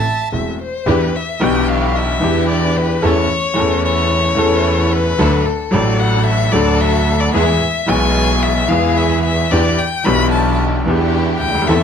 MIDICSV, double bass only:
0, 0, Header, 1, 2, 480
1, 0, Start_track
1, 0, Tempo, 541516
1, 765, Time_signature, 4, 2, 24, 8
1, 10489, End_track
2, 0, Start_track
2, 0, Title_t, "Double bass"
2, 0, Program_c, 0, 43
2, 289, Note_on_c, 0, 28, 44
2, 489, Note_off_c, 0, 28, 0
2, 767, Note_on_c, 0, 40, 90
2, 968, Note_off_c, 0, 40, 0
2, 1251, Note_on_c, 0, 35, 74
2, 1932, Note_off_c, 0, 35, 0
2, 1964, Note_on_c, 0, 40, 82
2, 2646, Note_off_c, 0, 40, 0
2, 2683, Note_on_c, 0, 40, 89
2, 2883, Note_off_c, 0, 40, 0
2, 3161, Note_on_c, 0, 40, 83
2, 3842, Note_off_c, 0, 40, 0
2, 3873, Note_on_c, 0, 40, 93
2, 4556, Note_off_c, 0, 40, 0
2, 4598, Note_on_c, 0, 38, 88
2, 4797, Note_off_c, 0, 38, 0
2, 5071, Note_on_c, 0, 33, 84
2, 5753, Note_off_c, 0, 33, 0
2, 5789, Note_on_c, 0, 38, 101
2, 6472, Note_off_c, 0, 38, 0
2, 6505, Note_on_c, 0, 40, 86
2, 6708, Note_off_c, 0, 40, 0
2, 6979, Note_on_c, 0, 35, 83
2, 7670, Note_off_c, 0, 35, 0
2, 7700, Note_on_c, 0, 40, 93
2, 8394, Note_off_c, 0, 40, 0
2, 8431, Note_on_c, 0, 40, 84
2, 8636, Note_off_c, 0, 40, 0
2, 8908, Note_on_c, 0, 35, 84
2, 9595, Note_off_c, 0, 35, 0
2, 9632, Note_on_c, 0, 40, 91
2, 10110, Note_off_c, 0, 40, 0
2, 10115, Note_on_c, 0, 38, 61
2, 10341, Note_off_c, 0, 38, 0
2, 10347, Note_on_c, 0, 40, 93
2, 10489, Note_off_c, 0, 40, 0
2, 10489, End_track
0, 0, End_of_file